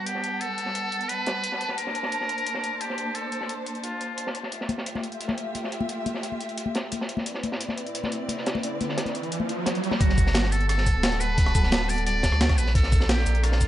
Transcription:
Already playing: G3 B3 F#5 A5
0.06 G4, closed hi-hat
0.15 snare
0.23 closed hi-hat
0.41 A4, closed hi-hat
0.58 closed hi-hat
0.66 snare
0.75 closed hi-hat
0.92 closed hi-hat
1.01 closed hi-hat
1.09 B4, closed hi-hat
1.26 snare, closed hi-hat
1.44 closed hi-hat
1.52 snare
1.61 closed hi-hat
1.69 snare
1.78 A#3 D4 A#4 C5, closed hi-hat
1.87 snare
1.95 closed hi-hat
2.03 snare
2.12 closed hi-hat
2.21 snare
2.29 closed hi-hat
2.38 closed hi-hat
2.47 closed hi-hat
2.55 snare
2.63 closed hi-hat
2.81 G4, closed hi-hat
2.90 snare
2.98 closed hi-hat
3.15 A4, closed hi-hat
3.32 closed hi-hat
3.41 snare
3.49 closed hi-hat
3.66 closed hi-hat
3.75 closed hi-hat
3.84 F4, closed hi-hat
4.01 closed hi-hat
4.17 closed hi-hat
4.27 snare
4.35 closed hi-hat
4.43 snare
4.51 A3 F4 G4 E5, closed hi-hat
4.61 snare
4.69 closed hi-hat, high conga
4.78 snare
4.86 closed hi-hat
4.95 snare, high conga
5.03 closed hi-hat
5.12 closed hi-hat
5.21 closed hi-hat
5.28 snare, high conga
5.38 closed hi-hat
5.55 closed hi-hat, high conga
5.64 snare
5.72 closed hi-hat
5.81 high conga
5.89 closed hi-hat
6.06 closed hi-hat, high conga
6.14 snare
6.23 closed hi-hat
6.32 high conga
6.40 closed hi-hat
6.49 closed hi-hat
6.58 closed hi-hat
6.66 high conga
6.75 snare, closed hi-hat
6.92 closed hi-hat, high conga
7.01 snare
7.09 closed hi-hat
7.17 snare, high conga
7.26 C4 E4 B4 D5, closed hi-hat, riser
7.34 snare
7.43 closed hi-hat, high conga
7.52 snare
7.61 closed hi-hat
7.69 snare, high conga
7.78 closed hi-hat
7.87 closed hi-hat
7.95 closed hi-hat
8.04 snare, high conga
8.12 closed hi-hat
8.29 closed hi-hat, high conga
8.38 snare
8.46 snare, closed hi-hat
8.54 snare, high conga
8.63 closed hi-hat
8.81 closed hi-hat, high conga
8.89 snare
8.98 snare, closed hi-hat
9.06 snare, closed hi-hat, high conga
9.15 closed hi-hat
9.23 closed hi-hat
9.32 closed hi-hat
9.40 high conga
9.49 closed hi-hat
9.66 snare, closed hi-hat, high conga
9.75 closed hi-hat
9.84 closed hi-hat
9.91 snare, closed hi-hat, high conga
10.00 G1 G3 B3 F#4 A4, kick, closed hi-hat
10.10 snare
10.18 kick, closed hi-hat, shaker
10.27 snare
10.34 snare, closed hi-hat
10.43 snare
10.52 A4, closed hi-hat, shaker
10.61 closed hi-hat
10.69 A4, cross-stick, closed hi-hat
10.78 snare
10.86 kick, closed hi-hat, shaker
10.95 D1
11.03 snare, closed hi-hat
11.12 snare, closed hi-hat
11.20 B4, closed hi-hat, shaker
11.38 kick, closed hi-hat
11.46 cross-stick
11.55 kick, closed hi-hat, shaker
11.63 snare
11.71 snare, closed hi-hat
11.89 D5, closed hi-hat, open hi-hat, shaker
11.98 closed hi-hat
12.06 D5, closed hi-hat
12.23 kick, snare, closed hi-hat, shaker
12.32 D2, cross-stick
12.41 snare, closed hi-hat
12.49 kick, cross-stick, snare, closed hi-hat
12.58 A#1 B4, closed hi-hat, shaker
12.66 snare
12.75 A#3 C4 D4 A4, kick, closed hi-hat
12.83 snare
12.92 kick, closed hi-hat, shaker
13.00 snare
13.09 G4, snare, closed hi-hat
13.18 snare
13.26 A#1, closed hi-hat, shaker
13.35 closed hi-hat
13.44 F4, cross-stick, closed hi-hat
13.52 snare
13.61 kick, closed hi-hat, shaker

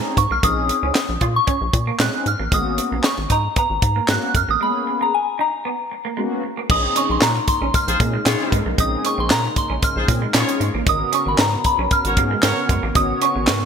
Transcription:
Already playing: C4 C#4 D#4 G#4 A#5
0.17 G#2 C#6, muted clean electric guitar stroke, kick, closed hi-hat
0.31 B1 A#3 F6
0.43 A#1 A#3 C4 C#4 D#4 G#4 D#6, kick, closed hi-hat
0.69 muted clean electric guitar stroke, closed hi-hat
0.83 C#2 C#4
0.95 snare, clap, closed hi-hat
1.09 A#1
1.21 A#2 F4, kick, closed hi-hat
1.36 C#6
1.47 C#4, kick, closed hi-hat
1.61 A#1
1.73 A#2, muted clean electric guitar stroke, kick, closed hi-hat
1.87 A#3
1.99 A#2 G#3 C4 C#4 D#4 G#4 F#6, snare, clap, closed hi-hat
2.26 G#2 F6, muted clean electric guitar stroke, closed hi-hat
2.39 A1 A#3
2.52 G#1 G#3 A#3 B3 C#4 F#4 D#6, kick, closed hi-hat
2.78 muted clean electric guitar stroke, closed hi-hat
2.92 A#1 A#3
3.03 C#6, snare, clap, closed hi-hat
3.18 G#1
3.30 G#2 D#4 A#5, kick, closed hi-hat
3.56 B3 A#5, kick, closed hi-hat
3.70 G#1
3.82 G#2, muted clean electric guitar stroke, kick, closed hi-hat
3.96 A#3
4.08 G#2 G#3 A#3 B3 C#4 F#4 F#6, snare, clap, closed hi-hat
4.35 F#2 F6, muted clean electric guitar stroke, kick, closed hi-hat
4.48 A1 A#3 D#6
4.61 G#3 A#3 B3 C#4 G#4 B5
4.87 muted clean electric guitar stroke
5.01 A#3 A#5
5.14 G#5
5.39 D#4 A#5
5.65 B3
5.91 muted clean electric guitar stroke
6.05 A#3
6.17 G#3 A#3 B3 C#4 F#4
6.44 muted clean electric guitar stroke
6.57 A#3
6.69 A#1 C#3 G#3 A#3 C4 C#4 D#4 G#4 D#6, kick, crash
6.96 C#4 C#6, closed hi-hat
7.10 A#1 C6, muted clean electric guitar stroke
7.21 A#2 A#3 A#5, snare, clap, closed hi-hat
7.36 muted clean electric guitar stroke
7.48 C6, kick, closed hi-hat
7.61 A#1 C#4
7.74 F6, muted clean electric guitar stroke, kick, closed hi-hat
7.88 A#1 F4 G#4 C5, closed hi-hat
7.99 A#2 A#3 C4 C#4 D#4 G#4, kick, closed hi-hat
8.13 G#3
8.25 A#2 C4 C#4 D#4 F4 G#4 C#5, snare, clap, closed hi-hat
8.52 G#2 G#3, kick, closed hi-hat
8.66 B1 A#3
8.78 A#1 C4 C#4 D#4 G#4 D#6, kick, closed hi-hat
9.04 C#4 C#6, closed hi-hat
9.18 A#1 C6, muted clean electric guitar stroke
9.30 A#2 A#3 A#5, snare, clap, closed hi-hat
9.44 muted clean electric guitar stroke
9.56 C6, kick, closed hi-hat
9.70 A#1 C#4
9.82 F6, muted clean electric guitar stroke, kick, closed hi-hat
9.96 A#1 F4 G#4 C5
10.08 A#2 A#3 C4 C#4 D#4 G#4, kick, closed hi-hat
10.22 G#3
10.34 A#2 C4 C#4 D#4 F4 G#4 C#5, muted clean electric guitar stroke, snare, clap, closed hi-hat
10.49 closed hi-hat
10.60 G#2 G#3, closed hi-hat
10.74 A1 A#3
10.86 G#1 B3 C#4 D#4 F#4 A#4 D#6, kick, closed hi-hat
11.12 C#4 C#6, closed hi-hat
11.26 G#1 B5, muted clean electric guitar stroke
11.38 G#2 B3 A#5, snare, clap, closed hi-hat
11.53 muted clean electric guitar stroke
11.64 B5, kick, closed hi-hat
11.79 B1 C#4
11.91 F6, muted clean electric guitar stroke, kick, closed hi-hat
12.05 G#1 F#4 A#4 C#5, closed hi-hat
12.17 G#2 A#3 B3 C#4 F#4 G#4, kick, closed hi-hat
12.31 G#3
12.42 G#2 B3 C#4 F#4 A#4 C#5, muted clean electric guitar stroke, snare, clap, closed hi-hat
12.69 F#2 G#3, kick, closed hi-hat
12.83 A1 A#3
12.95 G#1 B3 C#4 D#4 F#4 C#5 D#6, kick, closed hi-hat
13.22 C#4 C#6, closed hi-hat
13.36 G#1, muted clean electric guitar stroke
13.47 G#2 B3, snare, clap, closed hi-hat
13.62 muted clean electric guitar stroke

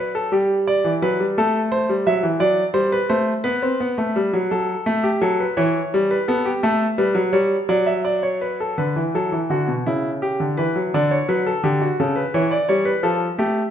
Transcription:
Already playing: F#3 B4
0.15 A4
0.32 G3 G4
0.67 D5
0.84 E3
1.02 F#3 B4
1.20 G3
1.38 A3 A4
1.72 C5
1.89 G3
2.07 F#3 E5
2.23 E3
2.40 F#3 D5
2.74 G3 C5
2.92 B4
3.09 A3 C5
3.44 B3 B4
3.62 C4
3.80 B3
3.98 A3
4.16 G3
4.33 F#3
4.51 F#3 A4
4.86 A3
5.04 G4
5.21 F#3 A4
5.40 B4
5.57 E3 C#5
5.94 G3
6.11 B4
6.28 B3 A4
6.45 G4
6.63 A3 A4
6.98 G3 B4
7.15 F#3
7.33 G3 C#5
7.69 F#3 D5
7.86 E5
8.05 D5
8.23 C#5
8.41 B4
8.60 A4
8.78 D3 B4
8.96 E3
9.15 F#3 A4
9.32 E3
9.50 D3 F#4
9.68 B2
9.86 C#3 E4
10.22 G4
10.40 D3
10.57 E3 B4
10.76 F#3
10.94 D3 D5
11.11 C#5
11.29 F#3 B4
11.46 A4
11.63 D3 G4
11.81 F#4
12.00 C#3 A4
12.16 B4
12.34 E3 C#5
12.51 D5
12.69 G3 C#5
12.85 B4
13.03 F3 A4
13.38 A3 G4

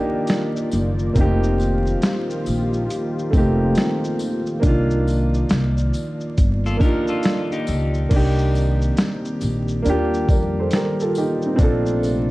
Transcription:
Already playing: D#3 A#3 D4 D#4 F4 G4 D5
0.27 snare, closed hi-hat, shaker
0.56 shaker
0.72 F#1, tambourine, shaker
0.99 shaker
1.14 F1 A#3 C4 G4, kick, closed hi-hat, shaker
1.18 D#4 G4
1.43 shaker
1.60 tambourine, shaker
1.86 shaker
2.02 snare, closed hi-hat, shaker
2.30 shaker
2.46 A#1, tambourine, shaker
2.73 shaker
2.90 closed hi-hat, shaker
3.19 shaker
3.31 F1 A3 C4, kick, tambourine, shaker
3.35 A#3 D#4 G4
3.75 snare, closed hi-hat, shaker
4.04 shaker
4.19 tambourine, shaker
4.46 shaker
4.60 A#3 D4 D5, kick, closed hi-hat, shaker
4.64 C2 D#4 F4
4.91 shaker
5.07 tambourine, shaker
5.34 shaker
5.49 C2, snare, closed hi-hat, shaker
5.78 shaker
5.93 tambourine, shaker
6.20 shaker
6.38 G1, kick, closed hi-hat, shaker
6.66 F4 A4, shaker
6.77 A#3 D4, shaker
6.81 D#4 F4 G4 A#4, kick, tambourine
7.07 F4 A4, shaker
7.23 snare, closed hi-hat, shaker
7.52 D#4 G4, shaker
7.67 C#2, tambourine, shaker
7.94 shaker
8.09 C2 D#3 A#3 C4 D4 G4, kick, closed hi-hat, crash, shaker
8.14 D#4 G4
8.38 shaker
8.55 tambourine, shaker
8.82 shaker
8.97 snare, closed hi-hat, shaker
9.25 shaker
9.41 A#1, tambourine, shaker
9.68 shaker
9.82 D#2 G3 A#3 D4, closed hi-hat, shaker
9.87 F4 G4
10.14 shaker
10.28 F2 A#4 D5, kick, tambourine, shaker
10.59 A4 C5
10.71 A#4, snare, closed hi-hat, shaker
10.75 G4
11.00 F4 A4, shaker
11.15 D#4 G4, tambourine, shaker
11.42 shaker
11.46 C4 D#4
11.56 A#1 C3 A3 C4 D4, kick, closed hi-hat, shaker
11.61 F4 A4
11.86 shaker
12.03 tambourine, shaker

